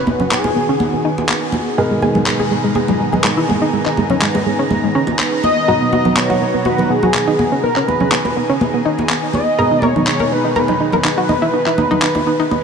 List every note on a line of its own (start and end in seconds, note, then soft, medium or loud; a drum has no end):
0.00 1.75 B2 medium
0.00 9.54 D#3 medium
0.00 1.75 F#3 medium
0.00 1.74 B3 medium
0.00 1.75 B3 medium
0.00 1.75 D#4 medium
0.00 1.74 F#4 medium
0.00 5.64 G#4 medium
0.00 0.31 B4 loud
0.00 1.75 A#5 medium
0.07 0.17 B3 medium
0.07 high conga medium
0.20 0.29 C#4 medium
0.20 low conga medium
0.31 0.42 B3 medium
0.31 1.50 G#4 medium
0.31 clap loud
0.44 0.54 B3 medium
0.44 high bongo medium
0.44 high conga medium
0.56 0.66 B3 medium
0.69 0.78 C#4 medium
0.80 0.90 B3 medium
0.80 high conga medium
0.93 1.02 B3 medium
1.05 1.69 D#4 medium
1.18 high bongo medium
1.18 high conga medium
1.29 clap loud
1.52 high bongo medium
1.52 high conga medium
1.78 5.65 B2 medium
1.78 5.65 G#3 medium
1.78 5.66 B3 medium
1.78 12.64 B3 medium
1.78 5.66 D#4 medium
1.78 1.88 G#4 medium
1.78 5.66 A#4 medium
1.78 12.64 A#5 medium
1.91 2.00 G#3 medium
2.02 2.12 G#4 medium
2.02 high conga medium
2.15 2.24 G#3 medium
2.15 low conga medium
2.26 2.37 G#3 medium
2.26 clap loud
2.40 2.49 G#4 medium
2.40 high conga medium
2.51 2.61 G#3 medium
2.64 2.73 G#3 medium
2.75 2.86 G#4 medium
2.75 high conga medium
2.88 2.97 G#3 medium
2.88 high bongo medium
2.88 low conga medium
3.00 3.10 G#3 medium
3.12 3.22 G#4 medium
3.12 high conga medium
3.12 low conga medium
3.24 3.34 G#3 medium
3.24 clap loud
3.37 3.46 E4 medium
3.49 3.59 G#3 medium
3.49 high conga medium
3.62 3.71 D#4 medium
3.73 3.83 G#3 medium
3.86 3.95 D#4 medium
3.86 clap soft
3.97 4.08 G#3 medium
3.97 high conga medium
4.10 4.19 C#4 medium
4.10 low conga medium
4.22 4.32 G#3 medium
4.22 clap loud
4.35 4.44 G#3 medium
4.35 high bongo medium
4.35 high conga medium
4.46 4.56 G#3 medium
4.59 4.68 C#4 medium
4.70 4.81 G#3 medium
4.70 high conga medium
4.84 4.92 G#3 medium
4.95 5.59 C#4 medium
5.07 high bongo medium
5.07 high conga medium
5.19 clap loud
5.44 6.19 D#5 loud
5.44 high bongo medium
5.44 high conga medium
5.68 9.56 B2 medium
5.68 9.56 F#3 medium
5.68 9.56 B3 medium
5.68 9.56 D#4 medium
5.68 7.61 F#4 medium
5.68 5.78 F#4 medium
5.68 9.56 A#5 medium
5.81 5.90 B3 medium
5.93 6.03 F#4 medium
5.93 high conga medium
6.05 6.14 B3 medium
6.05 low conga medium
6.17 6.27 B3 medium
6.17 6.67 C#5 loud
6.17 clap loud
6.30 6.39 F#4 medium
6.30 high conga medium
6.41 6.51 B3 medium
6.54 6.63 B3 medium
6.65 6.76 F#4 medium
6.65 6.92 B4 loud
6.65 high conga medium
6.78 6.88 B3 medium
6.78 high bongo medium
6.78 low conga medium
6.90 7.00 B3 medium
6.90 7.63 G#4 loud
7.03 7.12 F#4 medium
7.03 high conga medium
7.03 low conga medium
7.14 7.25 B3 medium
7.14 clap loud
7.28 7.36 D#4 medium
7.39 7.49 B3 medium
7.39 high conga medium
7.52 7.61 C#4 medium
7.63 7.73 B3 medium
7.63 12.64 G#4 medium
7.63 7.86 A#4 medium
7.76 7.85 C#4 medium
7.76 clap soft
7.88 7.98 B3 medium
7.88 8.57 B4 medium
7.88 high conga medium
8.00 8.10 C#4 medium
8.00 low conga medium
8.12 8.22 B3 medium
8.12 clap loud
8.25 8.34 B3 medium
8.25 high bongo medium
8.25 high conga medium
8.37 8.47 B3 medium
8.50 8.58 C#4 medium
8.61 8.71 B3 medium
8.61 high conga medium
8.74 8.83 B3 medium
8.85 9.49 D#4 medium
8.98 high bongo medium
8.98 high conga medium
9.09 clap loud
9.34 9.85 D#5 loud
9.34 high bongo medium
9.34 high conga medium
9.58 12.64 B2 medium
9.58 12.64 D#3 medium
9.58 12.64 G#3 medium
9.58 12.64 B3 medium
9.58 12.64 D#4 medium
9.58 9.68 A#4 medium
9.58 12.64 A#5 medium
9.71 9.80 D#4 medium
9.82 9.93 A#4 medium
9.82 10.03 C#5 loud
9.82 high conga medium
9.96 10.05 D#4 medium
9.96 low conga medium
10.07 10.17 D#4 medium
10.07 10.34 C#5 loud
10.07 clap loud
10.20 10.29 A#4 medium
10.20 high conga medium
10.32 10.42 D#4 medium
10.32 10.56 B4 medium
10.45 10.53 D#4 medium
10.56 10.66 A#4 medium
10.56 12.64 B4 loud
10.56 high conga medium
10.68 10.78 D#4 medium
10.68 high bongo medium
10.68 low conga medium
10.80 10.90 D#4 medium
10.92 11.02 A#4 medium
10.92 high conga medium
10.92 low conga medium
11.04 11.15 D#4 medium
11.04 clap loud
11.18 11.27 F#4 medium
11.29 11.39 D#4 medium
11.29 high conga medium
11.42 11.51 E4 medium
11.54 11.64 D#4 medium
11.66 11.75 E4 medium
11.66 clap soft
11.78 11.88 D#4 medium
11.78 high conga medium
11.91 12.00 D#4 medium
11.91 low conga medium
12.02 12.12 D#4 medium
12.02 clap loud
12.15 12.24 D#4 medium
12.15 high bongo medium
12.15 high conga medium
12.27 12.37 D#4 medium
12.40 12.49 D#4 medium
12.51 12.61 D#4 medium
12.51 reverse cymbal medium
12.51 high conga medium